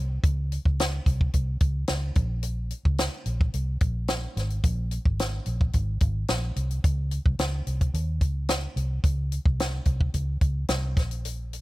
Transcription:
0.00 0.18 C2 loud
0.23 0.57 C#2 loud
0.23 kick loud
0.23 closed hi-hat loud
0.52 closed hi-hat medium
0.65 0.98 C#2 medium
0.65 kick medium
0.80 snare loud
0.80 closed hi-hat loud
1.06 1.28 C2 medium
1.06 kick medium
1.06 closed hi-hat medium
1.21 kick loud
1.33 1.56 C2 medium
1.33 kick medium
1.33 closed hi-hat medium
1.60 1.83 C#2 medium
1.60 kick loud
1.60 closed hi-hat medium
1.88 2.11 C#2 medium
1.88 snare loud
1.88 closed hi-hat medium
2.15 2.71 A#1 loud
2.15 kick loud
2.15 closed hi-hat medium
2.43 closed hi-hat loud
2.71 closed hi-hat medium
2.85 3.07 C#2 medium
2.85 kick medium
2.98 snare loud
2.98 closed hi-hat loud
3.26 3.48 A#1 medium
3.26 closed hi-hat medium
3.41 kick loud
3.54 3.76 C2 medium
3.54 closed hi-hat medium
3.81 4.25 A#1 medium
3.81 kick loud
3.81 closed hi-hat medium
4.08 snare loud
4.08 closed hi-hat loud
4.37 4.59 G#1 loud
4.37 snare soft
4.37 closed hi-hat medium
4.50 closed hi-hat medium
4.64 4.97 A#1 loud
4.64 kick loud
4.64 closed hi-hat loud
4.91 closed hi-hat medium
5.05 5.38 G#1 medium
5.05 kick medium
5.19 snare loud
5.19 closed hi-hat loud
5.46 5.69 A#1 medium
5.46 closed hi-hat medium
5.61 kick loud
5.73 5.96 G#1 loud
5.73 kick medium
5.73 closed hi-hat medium
6.00 6.23 G#1 medium
6.00 kick loud
6.00 closed hi-hat medium
6.28 6.51 A#1 medium
6.28 snare loud
6.28 closed hi-hat medium
6.56 6.79 C2 loud
6.56 closed hi-hat medium
6.71 closed hi-hat medium
6.84 7.17 C#2 loud
6.84 kick loud
6.84 closed hi-hat loud
7.11 closed hi-hat medium
7.26 7.37 C2 loud
7.26 kick loud
7.39 7.61 C#2 loud
7.39 snare loud
7.39 closed hi-hat loud
7.67 7.89 C2 medium
7.67 closed hi-hat medium
7.81 kick medium
7.81 closed hi-hat medium
7.94 8.21 D#2 loud
7.94 closed hi-hat medium
8.21 8.66 C#2 medium
8.21 kick medium
8.21 closed hi-hat medium
8.49 snare loud
8.49 closed hi-hat medium
8.76 8.99 C2 loud
8.76 closed hi-hat medium
9.04 9.37 C#2 loud
9.04 kick loud
9.04 closed hi-hat medium
9.32 closed hi-hat medium
9.46 9.79 C2 medium
9.46 kick medium
9.60 snare loud
9.60 closed hi-hat loud
9.85 10.09 C2 medium
9.85 kick medium
9.85 closed hi-hat medium
10.01 kick loud
10.14 10.36 C#2 medium
10.14 kick medium
10.14 closed hi-hat medium
10.41 10.64 C#2 medium
10.41 kick loud
10.41 closed hi-hat medium
10.68 10.97 C2 medium
10.68 snare loud
10.68 closed hi-hat medium
10.97 11.61 A#1 loud
10.97 kick loud
10.97 snare soft
10.97 closed hi-hat medium
11.11 closed hi-hat medium
11.25 closed hi-hat loud
11.53 closed hi-hat medium

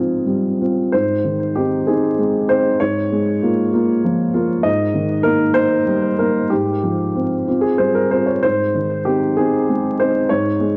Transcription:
0.00 0.89 G#2 soft
0.00 0.95 F3 soft
0.00 0.61 C4 soft
0.00 0.62 F4 soft
0.00 0.95 G#4 soft
0.26 0.80 G3 soft
0.61 0.90 C4 soft
0.61 0.90 F4 soft
0.92 2.77 G#2 soft
0.92 1.55 C5 medium
1.24 1.74 D#3 soft
1.55 1.84 C4 soft
1.55 1.84 D#4 soft
1.55 1.87 G4 medium
1.87 2.16 C4 soft
1.87 2.16 D#4 soft
1.87 2.50 G#4 medium
2.18 2.68 G#3 soft
2.49 2.78 C4 soft
2.49 2.78 D#4 soft
2.49 2.80 C5 medium
2.80 4.61 G#2 soft
2.80 4.33 C#5 medium
3.12 3.60 G#3 soft
3.43 3.70 A#3 soft
3.43 3.70 F4 soft
3.73 4.00 A#3 soft
3.73 4.01 F4 soft
4.04 4.53 F3 soft
4.34 4.61 A#3 soft
4.34 4.61 F4 soft
4.63 6.46 G#2 soft
4.63 5.25 D#5 medium
4.94 5.43 D#3 soft
5.23 5.53 A#3 soft
5.23 5.53 D#4 soft
5.23 5.55 A#4 medium
5.54 5.83 A#3 soft
5.54 5.84 D#4 soft
5.54 6.17 C5 medium
5.86 6.37 G3 soft
6.18 6.48 A#3 soft
6.18 6.48 D#4 soft
6.18 6.50 A#4 medium
6.50 8.40 G#2 soft
6.50 7.62 G4 medium
6.83 7.34 F3 soft
7.15 7.43 C4 soft
7.15 7.44 F4 soft
7.48 7.76 C4 soft
7.48 7.76 F4 soft
7.61 7.78 G#4 medium
7.78 8.31 G3 soft
7.78 7.95 C5 medium
7.95 8.11 A#4 medium
8.11 8.40 C4 soft
8.11 8.41 F4 soft
8.11 8.27 C5 medium
8.26 8.43 C#5 soft
8.43 10.26 G#2 soft
8.43 9.06 C5 medium
8.75 9.25 D#3 soft
9.05 9.34 C4 soft
9.05 9.35 D#4 soft
9.05 9.37 G4 medium
9.37 9.66 C4 soft
9.37 9.66 D#4 soft
9.37 9.99 G#4 medium
9.69 10.18 G#3 soft
10.00 10.27 C4 soft
10.00 10.27 D#4 soft
10.00 10.30 C5 medium
10.29 10.77 G#2 soft
10.29 10.77 C#5 medium
10.60 10.77 G#3 soft

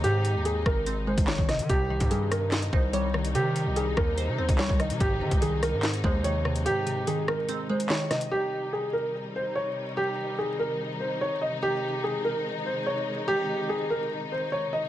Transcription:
0.00 0.36 G#2 loud
0.00 1.07 G#2 medium
0.00 0.23 C3 medium
0.00 1.65 C3 medium
0.00 0.44 D#3 medium
0.00 1.65 D#3 medium
0.00 0.45 G#3 medium
0.00 1.66 G#3 medium
0.00 0.25 D#4 medium
0.00 1.66 D#4 medium
0.00 0.43 G4 loud
0.00 closed hi-hat medium
0.25 1.28 C3 medium
0.25 closed hi-hat medium
0.35 0.64 D#2 loud
0.45 1.27 D#3 medium
0.45 0.65 G#4 medium
0.45 closed hi-hat medium
0.66 1.16 G#1 loud
0.66 0.85 A#4 medium
0.66 kick loud
0.66 cross-stick loud
0.86 1.69 C4 medium
0.86 closed hi-hat medium
1.07 1.69 G#3 medium
1.07 1.27 C5 medium
1.18 1.38 G#1 loud
1.18 kick loud
1.18 closed hi-hat medium
1.28 1.69 D#3 medium
1.28 1.47 C#5 medium
1.28 snare loud
1.28 clap medium
1.38 1.61 G#1 loud
1.38 kick medium
1.49 1.68 C3 medium
1.49 1.68 D#5 medium
1.49 cross-stick medium
1.49 snare medium
1.49 closed hi-hat medium
1.59 1.69 D#3 loud
1.59 closed hi-hat medium
1.69 1.99 C2 loud
1.69 2.73 C3 medium
1.69 8.28 C3 medium
1.69 8.28 D#3 medium
1.69 4.97 G3 medium
1.69 8.28 D#4 medium
1.69 2.08 G4 loud
1.69 kick loud
1.69 closed hi-hat medium
1.90 2.94 D#3 medium
2.00 2.70 G2 loud
2.00 kick loud
2.00 closed hi-hat medium
2.11 2.92 G3 medium
2.11 2.30 G#4 medium
2.11 closed hi-hat medium
2.31 2.51 A#4 medium
2.31 cross-stick loud
2.31 closed hi-hat medium
2.52 3.56 D#5 medium
2.52 snare loud
2.52 clap medium
2.52 closed hi-hat medium
2.63 closed hi-hat medium
2.73 3.36 C2 loud
2.73 3.76 D#4 medium
2.73 2.93 C5 medium
2.73 kick medium
2.93 3.75 G3 loud
2.93 3.32 C#5 medium
2.93 closed hi-hat medium
3.14 3.54 D#3 medium
3.14 cross-stick medium
3.25 closed hi-hat medium
3.35 4.38 C3 medium
3.35 3.67 D#3 loud
3.35 3.74 G4 loud
3.35 closed hi-hat medium
3.56 4.59 D#3 medium
3.56 closed hi-hat medium
3.66 3.95 C2 loud
3.76 4.58 G3 medium
3.76 3.96 G#4 medium
3.76 closed hi-hat medium
3.97 4.30 D#2 loud
3.97 4.16 A#4 medium
3.97 kick loud
3.97 cross-stick loud
4.18 5.00 C5 medium
4.18 closed hi-hat medium
4.28 4.40 C3 loud
4.38 4.48 D#2 loud
4.38 5.00 C4 medium
4.38 4.58 C5 medium
4.49 4.69 C2 loud
4.49 kick loud
4.49 closed hi-hat medium
4.59 5.00 G3 medium
4.59 4.78 C#5 medium
4.59 snare loud
4.59 clap medium
4.69 4.92 C2 loud
4.69 kick medium
4.79 5.00 D#3 medium
4.79 4.99 D#5 medium
4.79 cross-stick medium
4.79 closed hi-hat medium
4.90 5.00 C3 loud
4.90 closed hi-hat medium
5.00 5.23 G#1 loud
5.00 6.04 G#2 medium
5.00 8.28 G#3 medium
5.00 5.39 G4 loud
5.00 kick loud
5.00 closed hi-hat medium
5.21 6.25 C3 medium
5.21 5.31 D#3 loud
5.31 5.74 C2 loud
5.31 kick loud
5.31 closed hi-hat medium
5.42 6.23 D#3 medium
5.42 5.61 G#4 medium
5.42 closed hi-hat medium
5.62 5.82 A#4 medium
5.62 cross-stick loud
5.62 closed hi-hat medium
5.73 6.02 G#2 loud
5.83 6.87 D#4 medium
5.83 snare loud
5.83 clap loud
5.83 closed hi-hat medium
5.94 closed hi-hat medium
6.04 6.66 D#2 loud
6.04 7.07 G#3 medium
6.04 6.23 C5 medium
6.04 kick medium
6.24 7.06 D#3 loud
6.24 6.63 C#5 medium
6.24 closed hi-hat medium
6.45 6.85 C3 medium
6.45 cross-stick medium
6.56 closed hi-hat medium
6.66 7.69 G#2 medium
6.66 7.05 G4 loud
6.66 closed hi-hat medium
6.87 7.90 C3 medium
6.87 closed hi-hat medium
7.07 7.89 D#3 medium
7.07 7.27 G#4 medium
7.07 closed hi-hat medium
7.28 7.47 A#4 medium
7.28 cross-stick loud
7.49 8.32 C4 medium
7.49 closed hi-hat medium
7.69 8.32 G#3 medium
7.69 7.89 C5 medium
7.80 closed hi-hat medium
7.90 8.32 D#3 medium
7.90 8.09 C#5 medium
7.90 snare loud
7.90 clap medium
8.11 8.32 C3 medium
8.11 8.30 D#5 medium
8.11 cross-stick medium
8.11 snare medium
8.11 closed hi-hat medium
8.21 closed hi-hat medium
8.31 14.89 C3 medium
8.31 14.89 D#3 medium
8.31 11.59 G3 medium
8.31 14.89 D#4 medium
8.31 8.70 G4 loud
8.73 8.92 G#4 medium
8.93 9.13 A#4 medium
9.36 9.55 C5 medium
9.55 9.94 C#5 medium
9.97 10.36 G4 loud
10.38 10.58 G#4 medium
10.59 10.79 A#4 medium
11.00 11.20 C5 medium
11.21 11.40 C#5 medium
11.41 11.61 D#5 medium
11.63 14.89 G#3 medium
11.63 12.01 G4 loud
12.04 12.23 G#4 medium
12.25 12.44 A#4 medium
12.66 12.85 C5 medium
12.86 13.25 C#5 medium
13.28 13.67 G4 loud
13.69 13.89 G#4 medium
13.90 14.10 A#4 medium
14.32 14.51 C5 medium
14.52 14.71 C#5 medium
14.73 14.89 D#5 medium

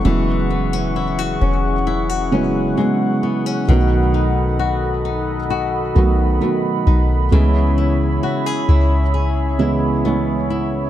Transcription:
0.00 0.14 A3 medium
0.00 0.50 C#4 medium
0.00 3.64 E5 medium
0.00 7.28 F#5 medium
0.00 3.64 C#6 medium
0.04 1.37 E1 loud
0.04 1.72 C#3 medium
0.04 3.68 E3 medium
0.04 1.73 F#3 medium
0.04 1.73 G#3 medium
0.04 1.73 B3 medium
0.04 1.74 E4 medium
0.04 3.65 G#4 medium
0.50 0.73 B3 medium
0.73 1.40 C#4 soft
0.96 1.19 E4 medium
1.19 1.86 F#4 medium
1.41 2.74 E1 medium
1.41 2.31 C#4 medium
1.87 2.09 E4 medium
2.09 3.78 F#4 medium
2.32 2.74 C#3 medium
2.32 2.74 F#3 medium
2.32 2.75 G#3 medium
2.32 2.75 B3 medium
2.32 3.23 C#4 medium
2.32 2.75 E4 loud
2.77 3.61 C#3 medium
2.77 3.62 F#3 medium
2.77 3.78 G#3 medium
2.77 3.62 G#3 medium
2.77 3.62 B3 medium
2.77 3.63 E4 medium
3.23 3.46 B3 medium
3.46 3.78 C#4 soft
3.68 5.92 B1 loud
3.68 7.32 B2 medium
3.68 5.36 D#3 medium
3.68 5.36 F#3 medium
3.68 5.37 A3 medium
3.68 5.37 B3 medium
3.68 5.37 F#4 medium
3.68 7.28 A4 medium
3.68 7.28 D#5 medium
3.68 10.90 B5 medium
4.14 5.04 D#4 medium
4.59 5.49 F#4 medium
5.05 5.95 D#4 medium
5.50 7.41 F#4 medium
5.95 6.39 B1 medium
5.95 6.37 D#3 medium
5.95 6.38 F#3 medium
5.95 6.38 A3 medium
5.95 6.38 B3 medium
5.95 6.86 D#4 medium
5.95 6.39 F#4 loud
6.41 7.25 D#3 medium
6.41 7.25 F#3 medium
6.41 7.41 A3 medium
6.41 7.25 A3 medium
6.41 7.26 B3 medium
6.41 7.26 F#4 medium
6.87 7.30 B1 loud
6.87 7.41 D#4 medium
7.32 8.19 C#2 loud
7.32 8.99 C#3 medium
7.32 10.90 C#3 medium
7.32 9.00 E3 medium
7.32 9.00 G#3 medium
7.32 9.00 B3 medium
7.32 9.01 E4 medium
7.32 10.90 G#4 medium
7.32 10.90 C#5 medium
7.32 10.90 E5 medium
7.78 8.68 E4 medium
8.23 8.46 F#4 medium
8.46 9.13 G#4 medium
8.69 10.90 C#2 medium
8.69 9.59 E4 medium
9.14 10.90 G#4 medium
9.59 10.01 C#3 medium
9.59 10.01 E3 medium
9.59 10.02 G#3 medium
9.59 10.02 B3 medium
9.59 10.50 E4 medium
9.59 10.03 E4 loud
10.05 10.89 C#3 medium
10.05 10.89 E3 medium
10.05 10.89 G#3 medium
10.05 10.90 B3 medium
10.05 10.90 C#4 medium
10.50 10.90 E4 medium

